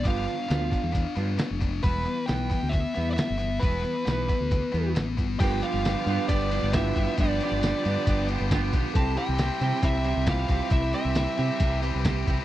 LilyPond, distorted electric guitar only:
\new Staff \with { instrumentName = "Distorted electric guitar" } { \time 4/4 \key g \mixolydian \tempo 4 = 135 <b d' g'>8 <b d'>8 <b d'>8 <b d'>8 <b d'>8 <b d'>8 <b d'>8 <b d'>8 | <e b e'>8 <e b>8 <e b>8 <e b>8 <e b>8 <e b>8 <e b>8 <e b>8 | <e b e'>8 <e b>8 <e b>8 <e b>8 <e b>8 <e b>8 <e b>8 <e b>8 | <b d' g'>8 <b d' g'>8 <b d' g'>8 <b d' g'>8 <b d' g'>8 <b d' g'>8 <b d' g'>8 <b d' g'>8 |
<b d' g'>8 <b d' g'>8 <b d' g'>8 <b d' g'>8 <b d' g'>8 <b d' g'>8 <b d' g'>8 <b d' g'>8 | <e c' e' g'>8 <e c' e' g'>8 <e c' e' g'>8 <e c' e' g'>8 <e c' e' g'>8 <e c' e' g'>8 <e c' e' g'>8 <e c' e' g'>8 | <e c' e' g'>8 <e c' e' g'>8 <e c' e' g'>8 <e c' e' g'>8 <e c' e' g'>8 <e c' e' g'>8 <e c' e' g'>8 <e c' e' g'>8 | }